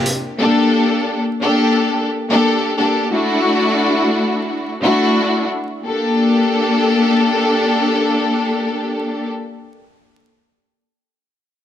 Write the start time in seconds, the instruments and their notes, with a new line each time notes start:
0.06 closed hi-hat
0.39 string section A#3 D4 G4 A4
1.42 string section A#3 D4 G4 A4
2.30 string section A#3 D4 G4 A4
2.77 string section A#3 D4 G4 A4
3.10 string section A3 D4 E4 F#4
4.82 string section A3 D4 E4 F#4
5.84 string section A#3 D4 G4 A4